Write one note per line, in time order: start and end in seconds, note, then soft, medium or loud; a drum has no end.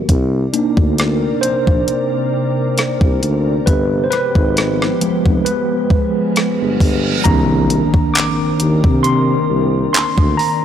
0.00 0.11 F#4 medium
0.00 0.11 G4 medium
0.09 0.45 C2 loud
0.09 3.64 C3 medium
0.09 3.64 C4 medium
0.09 3.64 A#4 medium
0.09 3.64 D5 medium
0.09 kick loud
0.09 closed hi-hat medium
0.53 1.15 A#3 medium
0.53 1.15 D4 medium
0.53 1.14 D#4 medium
0.53 closed hi-hat medium
0.77 1.30 D2 medium
0.77 kick medium
0.98 cross-stick loud
0.98 closed hi-hat medium
1.41 1.54 A#1 soft
1.41 3.17 C5 loud
1.41 closed hi-hat medium
1.67 1.84 A#1 medium
1.67 kick medium
1.88 closed hi-hat medium
2.78 cross-stick medium
2.78 closed hi-hat medium
3.01 3.18 C2 medium
3.01 kick medium
3.23 3.59 D2 medium
3.23 closed hi-hat medium
3.66 4.03 G1 loud
3.66 7.22 F3 medium
3.66 7.22 G#3 medium
3.66 7.22 B3 medium
3.66 5.45 G4 medium
3.66 4.06 B4 loud
3.66 kick loud
3.66 closed hi-hat medium
4.04 4.11 C5 medium
4.11 5.44 B4 loud
4.11 cross-stick medium
4.11 closed hi-hat medium
4.35 4.88 G#1 loud
4.35 kick medium
4.57 cross-stick loud
4.57 closed hi-hat medium
4.82 cross-stick medium
5.01 5.12 F1 soft
5.01 7.21 F3 medium
5.01 7.22 G#3 soft
5.01 7.22 B3 medium
5.01 closed hi-hat medium
5.26 5.42 F1 medium
5.26 kick medium
5.45 7.24 G#4 medium
5.45 6.76 B4 loud
5.45 closed hi-hat medium
5.45 reverse cymbal medium
5.90 kick medium
6.36 cross-stick loud
6.36 closed hi-hat medium
6.61 6.77 G1 medium
6.80 7.17 G1 loud
6.80 kick medium
6.80 open hi-hat medium
7.24 7.81 C2 loud
7.24 7.86 D#3 medium
7.24 10.65 D#3 medium
7.24 7.87 A#3 medium
7.24 10.65 C4 medium
7.24 10.65 D4 medium
7.24 7.87 D4 medium
7.24 10.65 A#4 medium
7.24 8.17 A#5 loud
7.24 kick loud
7.24 closed hi-hat medium
7.24 impact medium
7.70 closed hi-hat medium
7.94 kick medium
8.14 9.07 D6 loud
8.14 clap loud
8.14 closed hi-hat medium
8.60 8.80 D#2 medium
8.60 closed hi-hat medium
8.84 9.37 C3 medium
8.84 kick loud
9.03 9.92 C6 loud
9.03 closed hi-hat medium
9.50 9.86 C2 loud
9.93 10.04 D2 soft
9.93 10.40 C6 loud
9.93 clap loud
9.93 closed hi-hat medium
10.18 10.35 D2 medium
10.18 kick medium
10.37 10.65 A#5 medium
10.37 open hi-hat medium